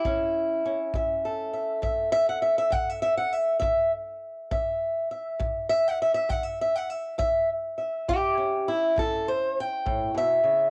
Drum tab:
BD |o--o--o--o--|o--o--o--o--|o--o--o--o--|